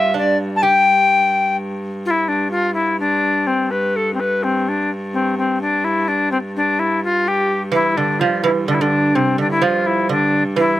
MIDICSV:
0, 0, Header, 1, 4, 480
1, 0, Start_track
1, 0, Tempo, 473934
1, 624, Time_signature, 3, 2, 24, 8
1, 10937, End_track
2, 0, Start_track
2, 0, Title_t, "Recorder"
2, 0, Program_c, 0, 74
2, 0, Note_on_c, 0, 76, 78
2, 139, Note_off_c, 0, 76, 0
2, 180, Note_on_c, 0, 74, 74
2, 386, Note_off_c, 0, 74, 0
2, 568, Note_on_c, 0, 81, 78
2, 631, Note_on_c, 0, 79, 102
2, 647, Note_off_c, 0, 81, 0
2, 1588, Note_off_c, 0, 79, 0
2, 2082, Note_on_c, 0, 65, 97
2, 2132, Note_on_c, 0, 64, 106
2, 2142, Note_off_c, 0, 65, 0
2, 2312, Note_on_c, 0, 62, 88
2, 2328, Note_off_c, 0, 64, 0
2, 2538, Note_off_c, 0, 62, 0
2, 2544, Note_on_c, 0, 65, 93
2, 2768, Note_off_c, 0, 65, 0
2, 2776, Note_on_c, 0, 64, 91
2, 3004, Note_off_c, 0, 64, 0
2, 3034, Note_on_c, 0, 62, 108
2, 3514, Note_on_c, 0, 60, 97
2, 3530, Note_off_c, 0, 62, 0
2, 3756, Note_on_c, 0, 71, 79
2, 3771, Note_off_c, 0, 60, 0
2, 4013, Note_on_c, 0, 69, 71
2, 4028, Note_off_c, 0, 71, 0
2, 4179, Note_off_c, 0, 69, 0
2, 4194, Note_on_c, 0, 60, 62
2, 4254, Note_on_c, 0, 71, 79
2, 4269, Note_off_c, 0, 60, 0
2, 4491, Note_on_c, 0, 60, 78
2, 4506, Note_off_c, 0, 71, 0
2, 4745, Note_on_c, 0, 62, 73
2, 4761, Note_off_c, 0, 60, 0
2, 4965, Note_off_c, 0, 62, 0
2, 5199, Note_on_c, 0, 60, 75
2, 5416, Note_off_c, 0, 60, 0
2, 5447, Note_on_c, 0, 60, 75
2, 5660, Note_off_c, 0, 60, 0
2, 5685, Note_on_c, 0, 62, 83
2, 5919, Note_on_c, 0, 64, 91
2, 5934, Note_off_c, 0, 62, 0
2, 6159, Note_on_c, 0, 62, 89
2, 6174, Note_off_c, 0, 64, 0
2, 6392, Note_off_c, 0, 62, 0
2, 6397, Note_on_c, 0, 60, 97
2, 6458, Note_off_c, 0, 60, 0
2, 6649, Note_on_c, 0, 62, 92
2, 6881, Note_on_c, 0, 64, 85
2, 6896, Note_off_c, 0, 62, 0
2, 7113, Note_off_c, 0, 64, 0
2, 7128, Note_on_c, 0, 65, 94
2, 7373, Note_on_c, 0, 67, 102
2, 7388, Note_off_c, 0, 65, 0
2, 7719, Note_off_c, 0, 67, 0
2, 7836, Note_on_c, 0, 64, 98
2, 8073, Note_on_c, 0, 62, 88
2, 8088, Note_off_c, 0, 64, 0
2, 8300, Note_on_c, 0, 65, 77
2, 8315, Note_off_c, 0, 62, 0
2, 8542, Note_off_c, 0, 65, 0
2, 8553, Note_on_c, 0, 64, 78
2, 8614, Note_off_c, 0, 64, 0
2, 8793, Note_on_c, 0, 62, 88
2, 8855, Note_on_c, 0, 64, 77
2, 8870, Note_off_c, 0, 62, 0
2, 8925, Note_on_c, 0, 62, 88
2, 8940, Note_off_c, 0, 64, 0
2, 9270, Note_on_c, 0, 60, 79
2, 9285, Note_off_c, 0, 62, 0
2, 9507, Note_off_c, 0, 60, 0
2, 9525, Note_on_c, 0, 62, 76
2, 9623, Note_off_c, 0, 62, 0
2, 9629, Note_on_c, 0, 64, 93
2, 9758, Note_on_c, 0, 65, 82
2, 9773, Note_off_c, 0, 64, 0
2, 9991, Note_on_c, 0, 64, 85
2, 10007, Note_off_c, 0, 65, 0
2, 10227, Note_off_c, 0, 64, 0
2, 10239, Note_on_c, 0, 62, 92
2, 10566, Note_off_c, 0, 62, 0
2, 10723, Note_on_c, 0, 64, 95
2, 10937, Note_off_c, 0, 64, 0
2, 10937, End_track
3, 0, Start_track
3, 0, Title_t, "Lute"
3, 0, Program_c, 1, 24
3, 0, Note_on_c, 1, 65, 68
3, 139, Note_off_c, 1, 65, 0
3, 143, Note_on_c, 1, 62, 59
3, 367, Note_off_c, 1, 62, 0
3, 636, Note_on_c, 1, 67, 76
3, 1550, Note_off_c, 1, 67, 0
3, 7815, Note_on_c, 1, 52, 86
3, 8067, Note_off_c, 1, 52, 0
3, 8077, Note_on_c, 1, 50, 66
3, 8313, Note_on_c, 1, 53, 86
3, 8317, Note_off_c, 1, 50, 0
3, 8544, Note_on_c, 1, 52, 85
3, 8556, Note_off_c, 1, 53, 0
3, 8788, Note_off_c, 1, 52, 0
3, 8792, Note_on_c, 1, 50, 80
3, 8911, Note_off_c, 1, 50, 0
3, 8924, Note_on_c, 1, 50, 78
3, 9266, Note_off_c, 1, 50, 0
3, 9270, Note_on_c, 1, 48, 72
3, 9490, Note_off_c, 1, 48, 0
3, 9502, Note_on_c, 1, 50, 62
3, 9739, Note_on_c, 1, 53, 88
3, 9750, Note_off_c, 1, 50, 0
3, 10222, Note_on_c, 1, 50, 77
3, 10235, Note_off_c, 1, 53, 0
3, 10557, Note_off_c, 1, 50, 0
3, 10699, Note_on_c, 1, 52, 78
3, 10937, Note_off_c, 1, 52, 0
3, 10937, End_track
4, 0, Start_track
4, 0, Title_t, "Hurdy-gurdy"
4, 0, Program_c, 2, 110
4, 0, Note_on_c, 2, 43, 63
4, 2051, Note_off_c, 2, 43, 0
4, 2051, Note_on_c, 2, 43, 65
4, 7836, Note_off_c, 2, 43, 0
4, 7836, Note_on_c, 2, 43, 70
4, 10937, Note_off_c, 2, 43, 0
4, 10937, End_track
0, 0, End_of_file